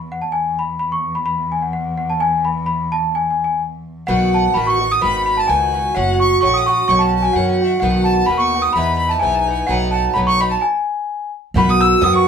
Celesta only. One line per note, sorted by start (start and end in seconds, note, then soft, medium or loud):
0.12 0.22 F#5 medium
0.22 0.32 A5 medium
0.32 0.58 G#5 medium
0.59 0.78 B5 medium
0.79 0.91 B5 medium
0.92 1.14 C#6 medium
1.15 1.24 B5 medium
1.26 1.50 B5 medium
1.52 1.63 G#5 medium
1.62 1.72 F#5 medium
1.73 1.96 F#5 medium
1.97 2.09 F#5 medium
2.10 2.21 A5 medium
2.20 2.47 G#5 medium
2.45 2.65 B5 medium
2.66 2.93 B5 medium
2.92 3.13 A5 medium
3.15 3.29 G#5 medium
3.31 3.43 G#5 medium
3.44 3.60 G#5 medium
4.07 4.31 F#5 loud
4.34 4.56 A5 medium
4.54 4.66 B5 medium
4.67 4.89 C#6 medium
4.91 5.03 D#6 medium
5.02 5.25 B5 medium
5.26 5.38 B5 medium
5.37 5.49 A5 medium
5.47 5.92 G#5 medium
5.95 6.21 F#5 medium
6.20 6.40 C#6 medium
6.41 6.53 C#6 medium
6.54 6.66 D#6 medium
6.66 6.87 C#6 medium
6.88 7.00 C#6 loud
6.99 7.24 A5 medium
7.22 7.35 G#5 medium
7.33 7.79 F#5 medium
7.80 8.07 F#5 medium
8.04 8.26 A5 medium
8.26 8.40 B5 medium
8.38 8.64 C#6 medium
8.62 8.73 D#6 medium
8.73 8.96 B5 medium
8.97 9.10 B5 medium
9.09 9.14 A5 medium
9.19 9.69 G#5 medium
9.67 9.91 F#5 medium
9.91 10.15 A5 medium
10.14 10.26 B5 medium
10.27 10.39 C#6 medium
10.40 10.52 B5 medium
10.51 10.63 A5 medium
10.61 11.30 G#5 medium
11.58 11.70 B5 medium
11.70 11.81 D#6 medium
11.81 12.03 E6 medium
12.03 12.14 D#6 loud
12.16 12.27 C#6 medium